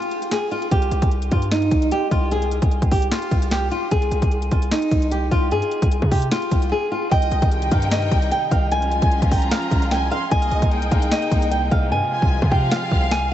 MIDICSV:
0, 0, Header, 1, 6, 480
1, 0, Start_track
1, 0, Tempo, 400000
1, 858, Time_signature, 4, 2, 24, 8
1, 16004, End_track
2, 0, Start_track
2, 0, Title_t, "Violin section"
2, 0, Program_c, 0, 48
2, 8538, Note_on_c, 0, 75, 98
2, 8989, Note_off_c, 0, 75, 0
2, 9017, Note_on_c, 0, 79, 98
2, 10409, Note_off_c, 0, 79, 0
2, 10699, Note_on_c, 0, 80, 81
2, 11150, Note_off_c, 0, 80, 0
2, 11177, Note_on_c, 0, 82, 84
2, 11854, Note_off_c, 0, 82, 0
2, 11899, Note_on_c, 0, 80, 98
2, 12126, Note_off_c, 0, 80, 0
2, 12138, Note_on_c, 0, 84, 83
2, 12366, Note_off_c, 0, 84, 0
2, 12375, Note_on_c, 0, 75, 113
2, 12828, Note_off_c, 0, 75, 0
2, 12857, Note_on_c, 0, 79, 97
2, 14249, Note_off_c, 0, 79, 0
2, 14539, Note_on_c, 0, 80, 92
2, 14989, Note_off_c, 0, 80, 0
2, 15018, Note_on_c, 0, 77, 99
2, 16004, Note_off_c, 0, 77, 0
2, 16004, End_track
3, 0, Start_track
3, 0, Title_t, "Nylon-string guitar"
3, 0, Program_c, 1, 24
3, 0, Note_on_c, 1, 65, 90
3, 351, Note_off_c, 1, 65, 0
3, 382, Note_on_c, 1, 68, 90
3, 565, Note_off_c, 1, 68, 0
3, 618, Note_on_c, 1, 65, 93
3, 803, Note_off_c, 1, 65, 0
3, 858, Note_on_c, 1, 67, 108
3, 1309, Note_off_c, 1, 67, 0
3, 1580, Note_on_c, 1, 65, 74
3, 1764, Note_off_c, 1, 65, 0
3, 1820, Note_on_c, 1, 63, 84
3, 2270, Note_off_c, 1, 63, 0
3, 2301, Note_on_c, 1, 67, 89
3, 2485, Note_off_c, 1, 67, 0
3, 2534, Note_on_c, 1, 65, 89
3, 2721, Note_off_c, 1, 65, 0
3, 2779, Note_on_c, 1, 68, 105
3, 3230, Note_off_c, 1, 68, 0
3, 3499, Note_on_c, 1, 67, 75
3, 3684, Note_off_c, 1, 67, 0
3, 3737, Note_on_c, 1, 65, 82
3, 4188, Note_off_c, 1, 65, 0
3, 4220, Note_on_c, 1, 67, 94
3, 4404, Note_off_c, 1, 67, 0
3, 4457, Note_on_c, 1, 65, 89
3, 4642, Note_off_c, 1, 65, 0
3, 4698, Note_on_c, 1, 68, 108
3, 5149, Note_off_c, 1, 68, 0
3, 5420, Note_on_c, 1, 65, 75
3, 5604, Note_off_c, 1, 65, 0
3, 5661, Note_on_c, 1, 63, 88
3, 6111, Note_off_c, 1, 63, 0
3, 6138, Note_on_c, 1, 67, 80
3, 6323, Note_off_c, 1, 67, 0
3, 6379, Note_on_c, 1, 65, 88
3, 6564, Note_off_c, 1, 65, 0
3, 6621, Note_on_c, 1, 68, 105
3, 7071, Note_off_c, 1, 68, 0
3, 7338, Note_on_c, 1, 67, 75
3, 7523, Note_off_c, 1, 67, 0
3, 7580, Note_on_c, 1, 65, 90
3, 8030, Note_off_c, 1, 65, 0
3, 8061, Note_on_c, 1, 68, 93
3, 8245, Note_off_c, 1, 68, 0
3, 8299, Note_on_c, 1, 65, 96
3, 8484, Note_off_c, 1, 65, 0
3, 8540, Note_on_c, 1, 79, 116
3, 8990, Note_off_c, 1, 79, 0
3, 9263, Note_on_c, 1, 77, 78
3, 9446, Note_off_c, 1, 77, 0
3, 9501, Note_on_c, 1, 75, 86
3, 9951, Note_off_c, 1, 75, 0
3, 9980, Note_on_c, 1, 79, 91
3, 10164, Note_off_c, 1, 79, 0
3, 10213, Note_on_c, 1, 77, 91
3, 10400, Note_off_c, 1, 77, 0
3, 10460, Note_on_c, 1, 80, 107
3, 10910, Note_off_c, 1, 80, 0
3, 11180, Note_on_c, 1, 79, 77
3, 11364, Note_off_c, 1, 79, 0
3, 11418, Note_on_c, 1, 77, 82
3, 11869, Note_off_c, 1, 77, 0
3, 11897, Note_on_c, 1, 79, 96
3, 12082, Note_off_c, 1, 79, 0
3, 12138, Note_on_c, 1, 77, 93
3, 12323, Note_off_c, 1, 77, 0
3, 12378, Note_on_c, 1, 80, 110
3, 12829, Note_off_c, 1, 80, 0
3, 13099, Note_on_c, 1, 77, 75
3, 13284, Note_off_c, 1, 77, 0
3, 13339, Note_on_c, 1, 75, 89
3, 13790, Note_off_c, 1, 75, 0
3, 13817, Note_on_c, 1, 79, 82
3, 14002, Note_off_c, 1, 79, 0
3, 14057, Note_on_c, 1, 77, 85
3, 14243, Note_off_c, 1, 77, 0
3, 14300, Note_on_c, 1, 80, 105
3, 14750, Note_off_c, 1, 80, 0
3, 15018, Note_on_c, 1, 79, 73
3, 15203, Note_off_c, 1, 79, 0
3, 15260, Note_on_c, 1, 77, 93
3, 15710, Note_off_c, 1, 77, 0
3, 15741, Note_on_c, 1, 80, 89
3, 15925, Note_off_c, 1, 80, 0
3, 16004, End_track
4, 0, Start_track
4, 0, Title_t, "String section"
4, 0, Program_c, 2, 48
4, 8538, Note_on_c, 2, 48, 83
4, 8538, Note_on_c, 2, 55, 76
4, 8539, Note_on_c, 2, 51, 76
4, 8540, Note_on_c, 2, 63, 90
4, 10439, Note_off_c, 2, 48, 0
4, 10439, Note_off_c, 2, 51, 0
4, 10439, Note_off_c, 2, 55, 0
4, 10440, Note_off_c, 2, 63, 0
4, 10459, Note_on_c, 2, 56, 77
4, 10460, Note_on_c, 2, 53, 78
4, 10460, Note_on_c, 2, 61, 84
4, 10460, Note_on_c, 2, 65, 94
4, 12359, Note_off_c, 2, 53, 0
4, 12360, Note_off_c, 2, 61, 0
4, 12360, Note_off_c, 2, 65, 0
4, 12377, Note_on_c, 2, 58, 80
4, 12378, Note_on_c, 2, 48, 87
4, 12378, Note_on_c, 2, 63, 97
4, 14278, Note_off_c, 2, 58, 0
4, 14279, Note_off_c, 2, 63, 0
4, 14298, Note_on_c, 2, 65, 93
4, 14299, Note_on_c, 2, 53, 79
4, 16004, Note_off_c, 2, 48, 0
4, 16004, Note_off_c, 2, 53, 0
4, 16004, Note_off_c, 2, 56, 0
4, 16004, Note_off_c, 2, 65, 0
4, 16004, End_track
5, 0, Start_track
5, 0, Title_t, "808-style bass"
5, 0, Program_c, 3, 38
5, 857, Note_on_c, 3, 36, 110
5, 1088, Note_off_c, 3, 36, 0
5, 1097, Note_on_c, 3, 36, 105
5, 1220, Note_off_c, 3, 36, 0
5, 1226, Note_on_c, 3, 36, 103
5, 1564, Note_off_c, 3, 36, 0
5, 1579, Note_on_c, 3, 43, 101
5, 2039, Note_off_c, 3, 43, 0
5, 2057, Note_on_c, 3, 36, 103
5, 2288, Note_off_c, 3, 36, 0
5, 2536, Note_on_c, 3, 36, 105
5, 3120, Note_off_c, 3, 36, 0
5, 3146, Note_on_c, 3, 36, 103
5, 3376, Note_off_c, 3, 36, 0
5, 3384, Note_on_c, 3, 36, 105
5, 3723, Note_off_c, 3, 36, 0
5, 3977, Note_on_c, 3, 36, 104
5, 4438, Note_off_c, 3, 36, 0
5, 4697, Note_on_c, 3, 36, 111
5, 4928, Note_off_c, 3, 36, 0
5, 4938, Note_on_c, 3, 36, 104
5, 5060, Note_off_c, 3, 36, 0
5, 5066, Note_on_c, 3, 36, 105
5, 5404, Note_off_c, 3, 36, 0
5, 5419, Note_on_c, 3, 36, 97
5, 5649, Note_off_c, 3, 36, 0
5, 5897, Note_on_c, 3, 36, 102
5, 6358, Note_off_c, 3, 36, 0
5, 6377, Note_on_c, 3, 36, 104
5, 6618, Note_on_c, 3, 43, 98
5, 6636, Note_off_c, 3, 36, 0
5, 6739, Note_off_c, 3, 43, 0
5, 6987, Note_on_c, 3, 36, 104
5, 7216, Note_off_c, 3, 36, 0
5, 7225, Note_on_c, 3, 48, 101
5, 7564, Note_off_c, 3, 48, 0
5, 7818, Note_on_c, 3, 36, 106
5, 8058, Note_off_c, 3, 36, 0
5, 8538, Note_on_c, 3, 36, 109
5, 8768, Note_off_c, 3, 36, 0
5, 8778, Note_on_c, 3, 36, 107
5, 8900, Note_off_c, 3, 36, 0
5, 8906, Note_on_c, 3, 36, 105
5, 9244, Note_off_c, 3, 36, 0
5, 9259, Note_on_c, 3, 43, 104
5, 9719, Note_off_c, 3, 43, 0
5, 9738, Note_on_c, 3, 36, 107
5, 9968, Note_off_c, 3, 36, 0
5, 10217, Note_on_c, 3, 36, 104
5, 10800, Note_off_c, 3, 36, 0
5, 10827, Note_on_c, 3, 36, 105
5, 11056, Note_off_c, 3, 36, 0
5, 11065, Note_on_c, 3, 36, 107
5, 11404, Note_off_c, 3, 36, 0
5, 11657, Note_on_c, 3, 36, 103
5, 12118, Note_off_c, 3, 36, 0
5, 12377, Note_on_c, 3, 36, 113
5, 12608, Note_off_c, 3, 36, 0
5, 12618, Note_on_c, 3, 36, 108
5, 12740, Note_off_c, 3, 36, 0
5, 12746, Note_on_c, 3, 36, 102
5, 13084, Note_off_c, 3, 36, 0
5, 13099, Note_on_c, 3, 36, 102
5, 13329, Note_off_c, 3, 36, 0
5, 13578, Note_on_c, 3, 36, 107
5, 14039, Note_off_c, 3, 36, 0
5, 14058, Note_on_c, 3, 36, 110
5, 14298, Note_on_c, 3, 43, 99
5, 14316, Note_off_c, 3, 36, 0
5, 14418, Note_off_c, 3, 43, 0
5, 14667, Note_on_c, 3, 36, 105
5, 14896, Note_off_c, 3, 36, 0
5, 14905, Note_on_c, 3, 48, 104
5, 15244, Note_off_c, 3, 48, 0
5, 15497, Note_on_c, 3, 36, 108
5, 15996, Note_off_c, 3, 36, 0
5, 16004, End_track
6, 0, Start_track
6, 0, Title_t, "Drums"
6, 24, Note_on_c, 9, 42, 59
6, 137, Note_off_c, 9, 42, 0
6, 137, Note_on_c, 9, 42, 81
6, 257, Note_off_c, 9, 42, 0
6, 264, Note_on_c, 9, 42, 61
6, 377, Note_off_c, 9, 42, 0
6, 377, Note_on_c, 9, 38, 98
6, 377, Note_on_c, 9, 42, 88
6, 497, Note_off_c, 9, 38, 0
6, 497, Note_off_c, 9, 42, 0
6, 617, Note_on_c, 9, 42, 38
6, 737, Note_off_c, 9, 42, 0
6, 745, Note_on_c, 9, 42, 65
6, 857, Note_off_c, 9, 42, 0
6, 857, Note_on_c, 9, 36, 114
6, 857, Note_on_c, 9, 42, 81
6, 977, Note_off_c, 9, 36, 0
6, 977, Note_off_c, 9, 42, 0
6, 984, Note_on_c, 9, 42, 61
6, 1097, Note_off_c, 9, 42, 0
6, 1097, Note_on_c, 9, 42, 69
6, 1217, Note_off_c, 9, 42, 0
6, 1224, Note_on_c, 9, 42, 87
6, 1226, Note_on_c, 9, 36, 100
6, 1337, Note_off_c, 9, 42, 0
6, 1337, Note_on_c, 9, 42, 49
6, 1346, Note_off_c, 9, 36, 0
6, 1457, Note_off_c, 9, 42, 0
6, 1464, Note_on_c, 9, 42, 80
6, 1577, Note_off_c, 9, 42, 0
6, 1577, Note_on_c, 9, 42, 82
6, 1579, Note_on_c, 9, 36, 92
6, 1697, Note_off_c, 9, 42, 0
6, 1699, Note_off_c, 9, 36, 0
6, 1704, Note_on_c, 9, 42, 64
6, 1818, Note_off_c, 9, 42, 0
6, 1818, Note_on_c, 9, 38, 118
6, 1818, Note_on_c, 9, 42, 82
6, 1938, Note_off_c, 9, 38, 0
6, 1938, Note_off_c, 9, 42, 0
6, 1944, Note_on_c, 9, 42, 58
6, 2057, Note_off_c, 9, 42, 0
6, 2057, Note_on_c, 9, 36, 92
6, 2057, Note_on_c, 9, 42, 86
6, 2177, Note_off_c, 9, 36, 0
6, 2177, Note_off_c, 9, 42, 0
6, 2185, Note_on_c, 9, 42, 59
6, 2297, Note_off_c, 9, 42, 0
6, 2297, Note_on_c, 9, 42, 86
6, 2417, Note_off_c, 9, 42, 0
6, 2536, Note_on_c, 9, 36, 88
6, 2537, Note_on_c, 9, 42, 61
6, 2656, Note_off_c, 9, 36, 0
6, 2657, Note_off_c, 9, 42, 0
6, 2777, Note_on_c, 9, 42, 81
6, 2897, Note_off_c, 9, 42, 0
6, 2904, Note_on_c, 9, 42, 60
6, 3017, Note_off_c, 9, 42, 0
6, 3017, Note_on_c, 9, 42, 70
6, 3137, Note_off_c, 9, 42, 0
6, 3144, Note_on_c, 9, 42, 85
6, 3146, Note_on_c, 9, 36, 101
6, 3258, Note_off_c, 9, 42, 0
6, 3258, Note_on_c, 9, 42, 49
6, 3266, Note_off_c, 9, 36, 0
6, 3378, Note_off_c, 9, 42, 0
6, 3385, Note_on_c, 9, 36, 89
6, 3385, Note_on_c, 9, 42, 83
6, 3497, Note_on_c, 9, 46, 81
6, 3498, Note_off_c, 9, 36, 0
6, 3498, Note_on_c, 9, 36, 95
6, 3505, Note_off_c, 9, 42, 0
6, 3617, Note_off_c, 9, 46, 0
6, 3618, Note_off_c, 9, 36, 0
6, 3625, Note_on_c, 9, 42, 67
6, 3738, Note_off_c, 9, 42, 0
6, 3738, Note_on_c, 9, 38, 121
6, 3738, Note_on_c, 9, 42, 83
6, 3858, Note_off_c, 9, 38, 0
6, 3858, Note_off_c, 9, 42, 0
6, 3864, Note_on_c, 9, 42, 57
6, 3977, Note_off_c, 9, 42, 0
6, 3977, Note_on_c, 9, 36, 93
6, 3977, Note_on_c, 9, 42, 82
6, 4097, Note_off_c, 9, 36, 0
6, 4097, Note_off_c, 9, 42, 0
6, 4105, Note_on_c, 9, 42, 59
6, 4216, Note_on_c, 9, 38, 102
6, 4217, Note_off_c, 9, 42, 0
6, 4217, Note_on_c, 9, 42, 84
6, 4336, Note_off_c, 9, 38, 0
6, 4337, Note_off_c, 9, 42, 0
6, 4457, Note_on_c, 9, 42, 60
6, 4577, Note_off_c, 9, 42, 0
6, 4696, Note_on_c, 9, 42, 81
6, 4697, Note_on_c, 9, 36, 115
6, 4816, Note_off_c, 9, 42, 0
6, 4817, Note_off_c, 9, 36, 0
6, 4824, Note_on_c, 9, 42, 60
6, 4937, Note_off_c, 9, 42, 0
6, 4937, Note_on_c, 9, 42, 71
6, 5057, Note_off_c, 9, 42, 0
6, 5064, Note_on_c, 9, 42, 84
6, 5066, Note_on_c, 9, 36, 101
6, 5177, Note_off_c, 9, 42, 0
6, 5177, Note_on_c, 9, 42, 48
6, 5186, Note_off_c, 9, 36, 0
6, 5297, Note_off_c, 9, 42, 0
6, 5305, Note_on_c, 9, 42, 81
6, 5417, Note_off_c, 9, 42, 0
6, 5417, Note_on_c, 9, 42, 83
6, 5419, Note_on_c, 9, 36, 93
6, 5537, Note_off_c, 9, 42, 0
6, 5539, Note_off_c, 9, 36, 0
6, 5545, Note_on_c, 9, 42, 64
6, 5657, Note_off_c, 9, 42, 0
6, 5657, Note_on_c, 9, 42, 83
6, 5658, Note_on_c, 9, 38, 117
6, 5777, Note_off_c, 9, 42, 0
6, 5778, Note_off_c, 9, 38, 0
6, 5784, Note_on_c, 9, 42, 59
6, 5897, Note_off_c, 9, 42, 0
6, 5897, Note_on_c, 9, 36, 93
6, 5897, Note_on_c, 9, 42, 85
6, 6017, Note_off_c, 9, 36, 0
6, 6017, Note_off_c, 9, 42, 0
6, 6025, Note_on_c, 9, 42, 61
6, 6138, Note_off_c, 9, 42, 0
6, 6138, Note_on_c, 9, 42, 82
6, 6258, Note_off_c, 9, 42, 0
6, 6377, Note_on_c, 9, 36, 88
6, 6377, Note_on_c, 9, 42, 61
6, 6497, Note_off_c, 9, 36, 0
6, 6497, Note_off_c, 9, 42, 0
6, 6618, Note_on_c, 9, 42, 83
6, 6738, Note_off_c, 9, 42, 0
6, 6745, Note_on_c, 9, 42, 60
6, 6858, Note_off_c, 9, 42, 0
6, 6858, Note_on_c, 9, 42, 71
6, 6978, Note_off_c, 9, 42, 0
6, 6985, Note_on_c, 9, 42, 84
6, 6987, Note_on_c, 9, 36, 102
6, 7099, Note_off_c, 9, 42, 0
6, 7099, Note_on_c, 9, 42, 79
6, 7107, Note_off_c, 9, 36, 0
6, 7219, Note_off_c, 9, 42, 0
6, 7225, Note_on_c, 9, 36, 90
6, 7338, Note_on_c, 9, 46, 82
6, 7339, Note_off_c, 9, 36, 0
6, 7339, Note_on_c, 9, 36, 95
6, 7458, Note_off_c, 9, 46, 0
6, 7459, Note_off_c, 9, 36, 0
6, 7465, Note_on_c, 9, 42, 66
6, 7578, Note_off_c, 9, 42, 0
6, 7578, Note_on_c, 9, 38, 120
6, 7578, Note_on_c, 9, 42, 82
6, 7698, Note_off_c, 9, 38, 0
6, 7698, Note_off_c, 9, 42, 0
6, 7705, Note_on_c, 9, 42, 58
6, 7818, Note_off_c, 9, 42, 0
6, 7818, Note_on_c, 9, 36, 93
6, 7818, Note_on_c, 9, 42, 87
6, 7938, Note_off_c, 9, 36, 0
6, 7938, Note_off_c, 9, 42, 0
6, 7945, Note_on_c, 9, 42, 59
6, 8065, Note_off_c, 9, 42, 0
6, 8538, Note_on_c, 9, 36, 111
6, 8538, Note_on_c, 9, 42, 84
6, 8658, Note_off_c, 9, 36, 0
6, 8658, Note_off_c, 9, 42, 0
6, 8665, Note_on_c, 9, 42, 59
6, 8778, Note_off_c, 9, 42, 0
6, 8778, Note_on_c, 9, 42, 71
6, 8898, Note_off_c, 9, 42, 0
6, 8905, Note_on_c, 9, 42, 83
6, 8906, Note_on_c, 9, 36, 105
6, 9018, Note_off_c, 9, 42, 0
6, 9018, Note_on_c, 9, 42, 49
6, 9026, Note_off_c, 9, 36, 0
6, 9138, Note_off_c, 9, 42, 0
6, 9145, Note_on_c, 9, 42, 84
6, 9258, Note_off_c, 9, 42, 0
6, 9258, Note_on_c, 9, 42, 88
6, 9259, Note_on_c, 9, 36, 93
6, 9378, Note_off_c, 9, 42, 0
6, 9379, Note_off_c, 9, 36, 0
6, 9384, Note_on_c, 9, 42, 67
6, 9497, Note_off_c, 9, 42, 0
6, 9497, Note_on_c, 9, 42, 84
6, 9498, Note_on_c, 9, 38, 120
6, 9617, Note_off_c, 9, 42, 0
6, 9618, Note_off_c, 9, 38, 0
6, 9625, Note_on_c, 9, 42, 61
6, 9738, Note_off_c, 9, 42, 0
6, 9738, Note_on_c, 9, 36, 98
6, 9738, Note_on_c, 9, 42, 85
6, 9858, Note_off_c, 9, 36, 0
6, 9858, Note_off_c, 9, 42, 0
6, 9866, Note_on_c, 9, 42, 60
6, 9979, Note_off_c, 9, 42, 0
6, 9979, Note_on_c, 9, 42, 85
6, 10099, Note_off_c, 9, 42, 0
6, 10217, Note_on_c, 9, 36, 89
6, 10218, Note_on_c, 9, 42, 62
6, 10337, Note_off_c, 9, 36, 0
6, 10338, Note_off_c, 9, 42, 0
6, 10458, Note_on_c, 9, 42, 87
6, 10578, Note_off_c, 9, 42, 0
6, 10586, Note_on_c, 9, 42, 62
6, 10698, Note_off_c, 9, 42, 0
6, 10698, Note_on_c, 9, 42, 73
6, 10818, Note_off_c, 9, 42, 0
6, 10825, Note_on_c, 9, 42, 87
6, 10826, Note_on_c, 9, 36, 103
6, 10938, Note_off_c, 9, 42, 0
6, 10938, Note_on_c, 9, 42, 50
6, 10946, Note_off_c, 9, 36, 0
6, 11058, Note_off_c, 9, 42, 0
6, 11064, Note_on_c, 9, 42, 82
6, 11065, Note_on_c, 9, 36, 91
6, 11177, Note_on_c, 9, 46, 89
6, 11179, Note_off_c, 9, 36, 0
6, 11179, Note_on_c, 9, 36, 93
6, 11184, Note_off_c, 9, 42, 0
6, 11297, Note_off_c, 9, 46, 0
6, 11299, Note_off_c, 9, 36, 0
6, 11304, Note_on_c, 9, 42, 67
6, 11417, Note_off_c, 9, 42, 0
6, 11417, Note_on_c, 9, 38, 127
6, 11417, Note_on_c, 9, 42, 82
6, 11537, Note_off_c, 9, 38, 0
6, 11537, Note_off_c, 9, 42, 0
6, 11544, Note_on_c, 9, 42, 59
6, 11657, Note_off_c, 9, 42, 0
6, 11657, Note_on_c, 9, 36, 99
6, 11657, Note_on_c, 9, 42, 85
6, 11777, Note_off_c, 9, 36, 0
6, 11777, Note_off_c, 9, 42, 0
6, 11785, Note_on_c, 9, 42, 62
6, 11896, Note_on_c, 9, 38, 99
6, 11897, Note_off_c, 9, 42, 0
6, 11897, Note_on_c, 9, 42, 87
6, 12016, Note_off_c, 9, 38, 0
6, 12017, Note_off_c, 9, 42, 0
6, 12137, Note_on_c, 9, 42, 59
6, 12257, Note_off_c, 9, 42, 0
6, 12377, Note_on_c, 9, 36, 112
6, 12377, Note_on_c, 9, 42, 85
6, 12497, Note_off_c, 9, 36, 0
6, 12497, Note_off_c, 9, 42, 0
6, 12505, Note_on_c, 9, 42, 62
6, 12618, Note_off_c, 9, 42, 0
6, 12618, Note_on_c, 9, 42, 74
6, 12738, Note_off_c, 9, 42, 0
6, 12745, Note_on_c, 9, 42, 84
6, 12746, Note_on_c, 9, 36, 108
6, 12858, Note_off_c, 9, 42, 0
6, 12858, Note_on_c, 9, 42, 51
6, 12866, Note_off_c, 9, 36, 0
6, 12978, Note_off_c, 9, 42, 0
6, 12985, Note_on_c, 9, 42, 87
6, 13098, Note_off_c, 9, 42, 0
6, 13098, Note_on_c, 9, 42, 87
6, 13099, Note_on_c, 9, 36, 96
6, 13218, Note_off_c, 9, 42, 0
6, 13219, Note_off_c, 9, 36, 0
6, 13225, Note_on_c, 9, 42, 69
6, 13338, Note_off_c, 9, 42, 0
6, 13338, Note_on_c, 9, 38, 125
6, 13338, Note_on_c, 9, 42, 82
6, 13458, Note_off_c, 9, 38, 0
6, 13458, Note_off_c, 9, 42, 0
6, 13465, Note_on_c, 9, 42, 60
6, 13578, Note_on_c, 9, 36, 99
6, 13579, Note_off_c, 9, 42, 0
6, 13579, Note_on_c, 9, 42, 88
6, 13698, Note_off_c, 9, 36, 0
6, 13699, Note_off_c, 9, 42, 0
6, 13706, Note_on_c, 9, 42, 60
6, 13818, Note_off_c, 9, 42, 0
6, 13818, Note_on_c, 9, 42, 90
6, 13938, Note_off_c, 9, 42, 0
6, 14058, Note_on_c, 9, 36, 93
6, 14059, Note_on_c, 9, 42, 63
6, 14178, Note_off_c, 9, 36, 0
6, 14179, Note_off_c, 9, 42, 0
6, 14667, Note_on_c, 9, 36, 104
6, 14787, Note_off_c, 9, 36, 0
6, 14905, Note_on_c, 9, 36, 89
6, 15019, Note_off_c, 9, 36, 0
6, 15019, Note_on_c, 9, 36, 95
6, 15139, Note_off_c, 9, 36, 0
6, 15258, Note_on_c, 9, 38, 123
6, 15378, Note_off_c, 9, 38, 0
6, 15498, Note_on_c, 9, 36, 92
6, 15618, Note_off_c, 9, 36, 0
6, 15737, Note_on_c, 9, 38, 101
6, 15857, Note_off_c, 9, 38, 0
6, 16004, End_track
0, 0, End_of_file